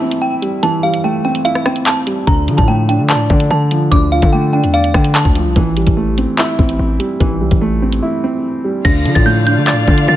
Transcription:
0.00 0.63 E3 loud
0.00 0.22 G3 medium
0.00 0.42 A3 medium
0.00 0.02 C4 medium
0.00 1.04 C4 medium
0.00 0.84 E4 loud
0.00 0.19 A5 medium
0.11 closed hi-hat medium
0.22 0.60 G5 medium
0.42 0.82 G3 medium
0.42 closed hi-hat medium
0.63 1.66 E3 loud
0.63 0.81 A5 medium
0.63 closed hi-hat medium
0.83 1.86 G3 medium
0.83 1.02 F5 medium
0.94 closed hi-hat medium
1.04 2.07 A3 loud
1.04 1.22 G5 medium
1.25 1.65 C4 medium
1.25 1.43 G5 medium
1.35 closed hi-hat medium
1.45 2.27 E4 medium
1.45 1.63 F5 medium
1.45 closed hi-hat medium
1.55 cross-stick medium
1.65 2.28 C4 medium
1.65 1.84 G5 medium
1.65 cross-stick medium
1.76 closed hi-hat medium
1.86 2.25 A5 medium
1.86 clap loud
2.07 2.27 G3 medium
2.07 closed hi-hat medium
2.27 2.49 D2 loud
2.27 3.30 D3 loud
2.27 2.56 A#5 medium
2.27 kick loud
2.27 closed hi-hat medium
2.48 2.58 D3 loud
2.48 3.51 F3 medium
2.48 closed hi-hat medium
2.57 3.01 A2 loud
2.57 2.67 A5 medium
2.57 kick medium
2.57 closed hi-hat medium
2.68 3.71 A3 medium
2.68 2.86 G5 medium
2.89 3.29 D4 medium
2.89 3.07 G5 medium
2.89 closed hi-hat medium
2.99 3.16 D3 loud
3.10 4.12 D5 loud
3.10 3.48 A5 medium
3.10 clap loud
3.15 3.29 A2 loud
3.30 3.50 D3 loud
3.30 4.33 D4 medium
3.30 kick medium
3.40 closed hi-hat medium
3.50 3.90 D3 loud
3.50 3.89 A5 medium
3.71 4.74 F3 medium
3.71 closed hi-hat medium
3.91 4.21 D2 loud
3.91 4.95 D3 loud
3.91 4.10 D6 medium
3.91 kick loud
3.91 closed hi-hat medium
4.12 5.15 F4 medium
4.12 4.30 F5 medium
4.22 4.65 D3 loud
4.22 kick medium
4.22 closed hi-hat medium
4.33 5.36 A3 medium
4.33 4.51 G5 medium
4.53 4.93 D4 medium
4.53 4.72 G5 medium
4.64 4.93 E2 loud
4.64 closed hi-hat medium
4.74 5.56 D5 loud
4.74 4.92 F5 medium
4.74 closed hi-hat soft
4.84 closed hi-hat medium
4.94 5.24 D3 loud
4.94 5.56 D4 medium
4.94 5.13 G5 medium
4.94 kick medium
4.94 cross-stick medium
5.04 closed hi-hat medium
5.15 5.54 A5 loud
5.15 clap loud
5.25 5.47 D2 loud
5.25 kick medium
5.35 5.56 F3 medium
5.35 closed hi-hat medium
5.46 5.55 C2 loud
5.56 5.86 A1 loud
5.56 6.59 E3 loud
5.56 kick loud
5.56 closed hi-hat medium
5.77 6.79 G3 medium
5.77 closed hi-hat medium
5.87 6.26 A1 loud
5.87 kick medium
5.87 closed hi-hat medium
5.97 7.00 A3 medium
6.18 6.58 C4 medium
6.18 closed hi-hat medium
6.38 7.41 E4 loud
6.38 clap loud
6.59 6.79 A1 loud
6.59 7.62 C4 medium
6.59 kick medium
6.69 closed hi-hat medium
6.79 6.99 A1 loud
6.99 7.39 G3 medium
6.99 closed hi-hat medium
7.20 7.43 A1 loud
7.20 8.23 E3 loud
7.20 kick loud
7.20 closed hi-hat medium
7.41 7.51 C2 loud
7.41 8.44 G3 medium
7.51 8.01 A1 loud
7.51 kick medium
7.51 closed hi-hat medium
7.61 8.64 A3 loud
7.82 8.22 C4 medium
7.92 closed hi-hat medium
8.02 8.85 E4 medium
8.24 8.85 C4 medium
8.64 8.85 G3 medium
8.85 9.07 D2 loud
8.85 9.87 D3 loud
8.85 10.16 F4 medium
8.85 10.16 A4 medium
8.85 10.16 D5 medium
8.85 10.16 F5 medium
8.85 9.14 A#6 medium
8.85 kick loud
8.85 closed hi-hat medium
8.85 crash loud
9.05 9.15 D3 loud
9.05 10.08 F3 medium
9.05 closed hi-hat medium
9.15 9.58 A2 loud
9.15 9.25 A6 medium
9.15 kick loud
9.15 closed hi-hat medium
9.26 10.16 A3 medium
9.26 9.44 G6 medium
9.47 9.86 D4 medium
9.47 9.65 G6 medium
9.47 closed hi-hat medium
9.57 9.74 D3 loud
9.67 10.16 D5 loud
9.67 10.06 A6 medium
9.67 clap loud
9.72 9.87 A2 loud
9.88 10.07 D3 loud
9.88 10.16 D4 medium
9.88 kick medium
9.98 closed hi-hat medium
10.08 10.16 D3 loud
10.08 10.16 A6 medium

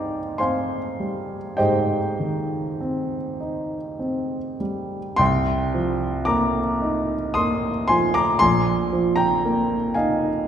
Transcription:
0.00 1.56 G#2 medium
0.00 1.00 G3 soft
0.00 0.19 C4 soft
0.00 0.76 D#4 soft
0.00 0.39 C5 medium
0.00 0.37 D5 medium
0.00 0.40 F5 medium
0.00 0.37 G5 medium
0.00 0.40 G#5 medium
0.00 0.37 A#5 medium
0.00 0.38 C6 medium
0.00 0.40 D6 medium
0.38 1.36 C4 soft
0.38 1.55 C5 medium
0.38 1.56 F5 medium
0.38 1.56 G#5 soft
0.38 1.59 C6 medium
1.00 1.97 G3 soft
1.57 5.15 G#2 soft
1.57 4.57 G4 medium
1.57 4.57 C5 medium
1.57 4.56 D#5 medium
1.57 4.60 G5 medium
2.20 3.16 D#3 soft
2.80 3.77 C4 soft
3.40 4.37 D#4 soft
3.99 4.97 C4 soft
4.60 5.19 G3 soft
5.16 8.36 C2 medium
5.16 6.23 G5 medium
5.16 6.26 C6 medium
5.74 6.60 F3 soft
6.25 7.14 A#3 soft
6.25 7.32 A#5 medium
6.25 7.35 D6 medium
6.82 7.69 D#4 soft
7.34 8.21 A#3 soft
7.34 7.85 C6 medium
7.34 7.88 D#6 medium
7.88 8.41 F3 soft
7.88 8.13 G#5 medium
7.88 8.14 C6 medium
8.14 8.39 A#5 medium
8.14 8.40 D6 medium
8.39 10.48 A#1 medium
8.39 9.13 G#5 medium
8.39 9.16 C6 loud
8.93 9.75 F3 soft
9.16 9.91 G5 medium
9.16 9.94 A#5 medium
9.45 10.28 A#3 soft
9.94 10.48 D#4 medium
9.94 10.44 F5 medium
9.94 10.47 G#5 medium

